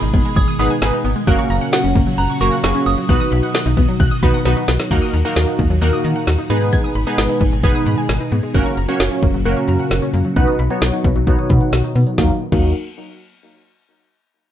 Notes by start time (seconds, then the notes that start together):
Already playing: B2 D#3 G#3 D#4 G#4 B5
0.02 G#1 D#4, closed hi-hat
0.14 G#1 B3, kick, closed hi-hat
0.25 G#3, closed hi-hat
0.36 G#1 D#6 G#6, kick, closed hi-hat
0.48 D#6, closed hi-hat
0.59 G#1 B3 D#4 G#4 B4 B5 D#6, closed hi-hat
0.70 G#5, closed hi-hat
0.82 G#1 B3 D#4 G#4 B4, snare, closed hi-hat
0.93 D#4, closed hi-hat
1.05 G#1 B3, open hi-hat
1.16 G#3, closed hi-hat
1.27 F#1 A#2 C#3 F#3 A#3 C#4 F#4 A#4 F#6, kick, closed hi-hat
1.39 C#6, closed hi-hat
1.50 F#1 A#5, closed hi-hat
1.61 F#5, closed hi-hat
1.73 F#4 F#5, snare, closed hi-hat
1.84 F#1 C#4, closed hi-hat
1.95 F#1 A#3, kick, closed hi-hat
2.07 F#3, closed hi-hat
2.18 F#1 A#5 F#6, closed hi-hat
2.30 C#6, closed hi-hat
2.41 F#1 A#3 C#4 F#4 A#4 A#5 C#6, closed hi-hat
2.52 F#5, closed hi-hat
2.64 F#1 A#3 C#4 F#4 G#4 C#6, snare, closed hi-hat
2.75 C#4, closed hi-hat
2.86 F#1 A#3 D#6, open hi-hat
2.98 F#3, closed hi-hat
3.09 B1 B2 D#3 B3 D#4 F#4 B4 F#6, kick, closed hi-hat
3.20 D#6, closed hi-hat
3.32 B1 B5, closed hi-hat
3.43 F#5, closed hi-hat
3.54 F#4, snare, closed hi-hat
3.66 B1 D#4, closed hi-hat
3.77 B1 B3, kick, closed hi-hat
3.89 F#3, closed hi-hat
4.00 B1 F#6, kick, closed hi-hat
4.11 D#6, closed hi-hat
4.22 B1 B3 D#4 F#4 B4 B5, kick, closed hi-hat
4.34 F#5, closed hi-hat
4.45 B1 B3 D#4 F#4 B4, snare, closed hi-hat
4.57 D#4, closed hi-hat
4.68 B1 B3, snare, open hi-hat
4.79 F#3, snare, closed hi-hat
4.91 D#2 A#2 D#3 F#3 A#3 D#4 F#4 A#4 F#6, kick, closed hi-hat, crash
5.02 D#6, closed hi-hat
5.14 D#2 A#5, closed hi-hat
5.25 A#3 D#4 F#4 A#4 F#5, closed hi-hat
5.36 D#2 F#4, snare, closed hi-hat
5.47 D#4, closed hi-hat
5.59 D#2 A#3, kick, closed hi-hat
5.70 D#2 F#3, closed hi-hat
5.82 D#2 A#3 D#4 F#4 A#4 F#6, closed hi-hat
5.93 D#6, closed hi-hat
6.04 D#3 A#5, closed hi-hat
6.16 F#5, closed hi-hat
6.27 D#2 F#4, snare, closed hi-hat
6.38 D#4, closed hi-hat
6.50 G#2 B2 D#3 G#3 B3 D#4 G#4 B4, open hi-hat
6.61 G#3, closed hi-hat
6.73 G#6, kick, closed hi-hat
6.84 D#6, closed hi-hat
6.95 G#1 B5, closed hi-hat
7.07 B3 D#4 G#4 B4 G#5, closed hi-hat
7.18 G#1 G#4, snare, closed hi-hat
7.29 D#4, closed hi-hat
7.41 G#1 B3, kick, closed hi-hat
7.52 G#1 G#3, closed hi-hat
7.63 G#1 B3 D#4 G#4 B4 G#6, kick, closed hi-hat
7.75 D#6, closed hi-hat
7.86 G#2 B5, closed hi-hat
7.97 G#5, closed hi-hat
8.09 G#1 G#4, snare, closed hi-hat
8.20 D#4, closed hi-hat
8.32 G#2 B3, open hi-hat
8.43 G#3, closed hi-hat
8.54 F#1 A#2 C#3 F#3 A#3 C#4 F#4 A#4 F#6, kick, closed hi-hat
8.66 C#6, closed hi-hat
8.77 F#1 A#5, closed hi-hat
8.89 A#3 C#4 F#4 C#5 F#5, closed hi-hat
9.00 F#1 F#4, snare, closed hi-hat
9.11 C#4, closed hi-hat
9.23 F#1 A#3, kick, closed hi-hat
9.34 F#1 F#3, closed hi-hat
9.45 F#1 A#3 C#4 F#4 A#4 F#6, closed hi-hat
9.57 C#6, closed hi-hat
9.68 F#2 A#5, closed hi-hat
9.79 F#5, closed hi-hat
9.91 F#1 F#4, snare, closed hi-hat
10.02 C#4, closed hi-hat
10.14 F#2 A#3, open hi-hat
10.25 F#3, closed hi-hat
10.36 B1 B2 D#3 B3 D#4 F#4 B4 F#6, kick, closed hi-hat
10.48 D#6, closed hi-hat
10.59 B1 B5, closed hi-hat
10.70 B3 D#4 F#4 C#5 F#5, closed hi-hat
10.82 B1 F#4, snare, closed hi-hat
10.93 D#4, closed hi-hat
11.04 B1 B3, kick, closed hi-hat
11.16 B1 F#3, closed hi-hat
11.27 B1 B3 D#4 F#4 C#5 F#6, kick, closed hi-hat
11.39 D#6, closed hi-hat
11.50 B2 B5, kick, closed hi-hat
11.61 F#5, closed hi-hat
11.73 B1 F#4, snare, closed hi-hat
11.84 D#4, closed hi-hat
11.95 B2 B3, open hi-hat
12.07 F#3, closed hi-hat
12.18 D#2 A#2 D#3 F#3 A#3 D#4 F#4 A#4, kick, snare
12.52 D#2 F#3 A#3 D#4 F#4 A#4, kick, crash